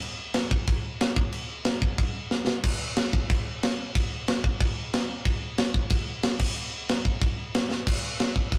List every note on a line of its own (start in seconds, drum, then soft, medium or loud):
0.02 crash medium
0.34 snare loud
0.34 crash medium
0.51 kick medium
0.68 kick loud
0.68 crash medium
1.01 snare loud
1.01 crash medium
1.16 kick loud
1.32 crash medium
1.65 snare loud
1.65 crash medium
1.82 kick medium
1.98 kick loud
1.98 crash medium
2.31 snare medium
2.47 snare medium
2.64 kick loud
2.64 crash loud
2.64 crash medium
2.96 snare loud
2.96 crash medium
3.13 kick medium
3.30 kick loud
3.30 crash medium
3.63 snare loud
3.63 crash medium
3.95 kick loud
3.95 crash medium
4.28 snare loud
4.28 crash medium
4.44 kick medium
4.60 kick loud
4.60 crash medium
4.93 snare loud
4.93 crash medium
5.25 kick loud
5.25 crash medium
5.58 snare loud
5.58 crash medium
5.74 kick medium
5.90 kick loud
5.90 crash medium
6.23 snare loud
6.23 crash medium
6.39 kick loud
6.39 crash loud
6.56 crash medium
6.89 snare loud
6.89 crash medium
7.05 kick medium
7.21 kick loud
7.21 crash medium
7.54 snare loud
7.54 crash medium
7.71 snare medium
7.87 kick loud
7.87 crash loud
7.87 crash medium
8.20 snare loud
8.20 crash medium
8.36 kick medium
8.52 kick loud
8.52 crash medium